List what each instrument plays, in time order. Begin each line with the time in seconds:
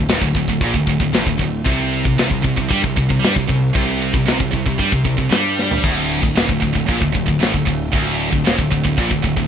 0.08 picked electric bass D#1, distorted electric guitar D#2, snare, ride
0.22 picked electric bass D1, distorted electric guitar D2, kick
0.35 picked electric bass D1, distorted electric guitar D2, kick, ride
0.48 picked electric bass D1, distorted electric guitar D2, kick
0.61 picked electric bass A#1, distorted electric guitar A#2, kick, ride
0.74 picked electric bass D1, distorted electric guitar D2, kick
0.87 picked electric bass D1, distorted electric guitar D2, kick, ride
1.00 picked electric bass D1, distorted electric guitar D2, kick
1.13 picked electric bass A1, distorted electric guitar A2, snare, ride
1.26 picked electric bass D1, distorted electric guitar D2, kick
1.38 picked electric bass D1, distorted electric guitar D2, kick, ride
1.65 picked electric bass C2, distorted electric guitar C3, kick, ride
1.93 ride
2.04 picked electric bass C2, distorted electric guitar C3, kick
2.18 picked electric bass C2, distorted electric guitar C3, snare, ride
2.30 picked electric bass C2, distorted electric guitar C3, kick
2.44 picked electric bass C2, distorted electric guitar C3, kick, ride
2.57 picked electric bass C2, distorted electric guitar C3, kick
2.70 picked electric bass G2, distorted electric guitar G3, kick, ride
2.83 picked electric bass C2, distorted electric guitar C3, kick
2.96 picked electric bass C2, distorted electric guitar C3, kick, ride
3.10 picked electric bass C2, distorted electric guitar C3, kick
3.23 picked electric bass G2, distorted electric guitar G3, snare, ride
3.36 picked electric bass C2, distorted electric guitar C3, kick
3.49 picked electric bass C2, distorted electric guitar C3, kick, ride
3.75 picked electric bass C2, distorted electric guitar C3, kick, ride
4.02 ride
4.14 picked electric bass C2, distorted electric guitar C3, kick
4.27 picked electric bass C2, distorted electric guitar C3, snare, ride
4.40 picked electric bass C2, distorted electric guitar C3, kick
4.53 picked electric bass C2, distorted electric guitar C3, kick, ride
4.66 picked electric bass C2, distorted electric guitar C3, kick
4.79 picked electric bass G2, distorted electric guitar G3, kick, ride
4.92 picked electric bass C2, distorted electric guitar C3, kick
5.05 picked electric bass C2, distorted electric guitar C3, kick, ride
5.18 picked electric bass C2, distorted electric guitar C3, kick
5.31 picked electric bass G2, distorted electric guitar G3, snare, ride
5.59 snare
5.71 floor tom
5.84 picked electric bass D1, distorted electric guitar D2, kick, crash
6.11 ride
6.23 picked electric bass D1, distorted electric guitar D2, kick
6.35 picked electric bass D#1, distorted electric guitar D#2, snare, ride
6.49 picked electric bass D1, distorted electric guitar D2, kick
6.62 picked electric bass D1, distorted electric guitar D2, kick, ride
6.75 picked electric bass D1, distorted electric guitar D2, kick
6.89 picked electric bass A#1, distorted electric guitar A#2, kick, ride
7.02 picked electric bass D1, distorted electric guitar D2, kick
7.15 picked electric bass D1, distorted electric guitar D2, kick, ride
7.28 picked electric bass D1, distorted electric guitar D2, kick
7.41 picked electric bass A1, distorted electric guitar A2, snare, ride
7.53 picked electric bass D1, distorted electric guitar D2, kick
7.67 picked electric bass D1, distorted electric guitar D2, kick, ride
7.93 picked electric bass D1, distorted electric guitar D2, kick, ride
8.20 ride
8.33 picked electric bass D1, distorted electric guitar D2, kick
8.46 picked electric bass D#1, distorted electric guitar D#2, snare, ride
8.59 picked electric bass D1, distorted electric guitar D2, kick
8.71 picked electric bass D1, distorted electric guitar D2, kick, ride
8.85 picked electric bass D1, distorted electric guitar D2, kick
8.98 picked electric bass A#1, distorted electric guitar A#2, kick, ride
9.11 picked electric bass D1, distorted electric guitar D2, kick
9.24 picked electric bass D1, distorted electric guitar D2, kick, ride
9.37 picked electric bass D1, distorted electric guitar D2, kick